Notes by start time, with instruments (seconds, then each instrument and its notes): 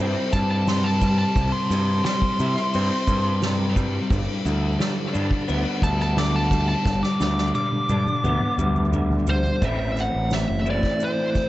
Already playing: clean electric guitar C3 G3 E4
0.00 picked electric bass G2, clean electric guitar C4
0.33 picked electric bass G2, clean electric guitar G3, lead electric guitar A5, kick, ride, maracas
0.51 lead electric guitar A5
0.67 clean electric guitar C3, lead electric guitar C6, snare, ride, maracas
0.84 lead electric guitar A5
1.01 clean electric guitar G3, kick, ride, maracas
1.19 lead electric guitar A5
1.35 picked electric bass C2, clean electric guitar C3, kick, ride, maracas
1.52 lead electric guitar C6
1.70 picked electric bass G2, clean electric guitar C3, snare, ride, maracas
2.04 clean electric guitar G3, lead electric guitar C6, snare, ride, maracas
2.22 kick
2.38 picked electric bass C3, clean electric guitar E4, ride, maracas
2.56 snare
2.73 picked electric bass G2, clean electric guitar C4, ride, maracas
3.07 picked electric bass G2, clean electric guitar G3, kick, ride, maracas
3.42 clean electric guitar C3, snare, ride, maracas
3.76 clean electric guitar G3, kick, ride, maracas
4.10 picked electric bass G1, clean electric guitar G2, kick, ride, maracas
4.45 picked electric bass D2, clean electric guitar D3, ride, maracas
4.79 clean electric guitar G3, snare, ride, maracas
5.13 picked electric bass G2, clean electric guitar D4, ride, maracas
5.31 kick
5.47 picked electric bass D2, clean electric guitar B3, ride, maracas
5.82 picked electric bass D2, clean electric guitar G3, lead electric guitar A5, kick, ride, maracas
6.00 lead electric guitar A5, snare
6.16 clean electric guitar D3, lead electric guitar D6, snare, ride, maracas
6.36 lead electric guitar A5
6.50 clean electric guitar G3, kick, ride, maracas
6.69 lead electric guitar A5
6.85 picked electric bass G1, clean electric guitar G2, kick, snare, maracas
7.03 lead electric guitar D6, snare
7.20 picked electric bass D2, clean electric guitar D3, snare, maracas
7.38 snare, maracas
7.54 clean electric guitar G3, lead electric guitar D6, high tom, maracas
7.72 high tom
7.89 picked electric bass G2, clean electric guitar D4, high tom, maracas
8.06 mid tom, maracas
8.24 picked electric bass D2, clean electric guitar B3, mid tom, maracas
8.41 mid tom
8.58 picked electric bass D2, clean electric guitar G3, mid tom, maracas
8.75 mid tom, maracas
8.92 clean electric guitar D3, mid tom, maracas
9.10 floor tom
9.27 clean electric guitar G3, lead electric guitar C5, floor tom, maracas
9.44 floor tom, maracas
9.61 picked electric bass A1, clean electric guitar A2 E3 A3 C4, kick, crash, maracas
9.65 clean electric guitar E4, lead electric guitar E5
9.96 lead electric guitar F#5, snare, ride, maracas
10.15 picked electric bass A1
10.31 lead electric guitar E5, snare, ride, maracas
10.50 picked electric bass F#1
10.65 clean electric guitar E3 A3 C4 E4, ride, maracas
10.69 clean electric guitar A2, lead electric guitar D5
10.83 kick, snare
11.00 lead electric guitar C5, ride, maracas
11.35 kick, snare, ride, maracas